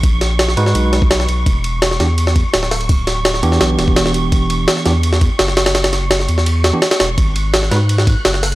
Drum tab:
RD |x-x-x-x-x-x-x-x-|x-x-x-x-x-x-x--x|x-x-x-x-x-x-x-x-|x-x-x-x-x-x-x-xx|
HH |----------------|--------------o-|----------------|----------------|
SD |--o-oo-o--o-oo--|----ooo--o--ooo-|--o-oo-oo-o-oo--|----ooo--o--oooo|
BD |o----------o----|o---------o-----|o----------o----|o---------o-----|

RD |xxx-x-x-x-x-xxx-|x-x-x-x-x-x-x---|
HH |----------------|--------------o-|
SD |ooo-oo-o--o-ooo-|----ooo--o--ooo-|
BD |----------------|o---------o-----|